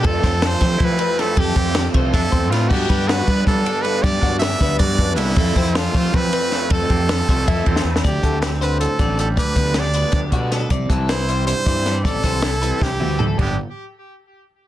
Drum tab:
CC |--------------|--------------|x-------------|--------------|
RD |x-x-x-x-x-x-x-|x-x-x-x-x-x-x-|--x-x-x-x-x-x-|x-x-x-x-x-x-x-|
HH |--------------|--------------|--------------|--------------|
SD |--o-o-o-----o-|----o---o---o-|----o---o-----|--o-o-o-------|
T2 |--------------|--------------|--------------|--------------|
FT |--------------|--------------|--------------|--------------|
BD |o-o---o-o-----|o-o---o-o-o---|o-o---o-o-----|o-o---o-o-o---|

CC |--------------|--------------|--------------|--------------|
RD |x-x-x-x-x-x-x-|x-x-x-x-x-x---|--------------|--------------|
HH |--------------|--------------|x-x-x-x-x-x-x-|x-x-x-x-x-x-x-|
SD |----o-------o-|----o------o-o|----o---------|----o-------o-|
T2 |--------------|--------------|--------------|--------------|
FT |--------------|--------------|--------------|--------------|
BD |o-o---o-o-----|o-o---o-o-o---|o-o-------o---|o-o-----o-o---|

CC |--------------|--------------|x-------------|
RD |--------------|--------------|--------------|
HH |x-x-x-x-x-x-x-|x-x-x-x-------|--------------|
SD |----o-------o-|--o-o---o-----|--------------|
T2 |--------------|----------o---|--------------|
FT |--------------|------------o-|o-------------|
BD |o-o-------o---|o-o-----o-----|o-------------|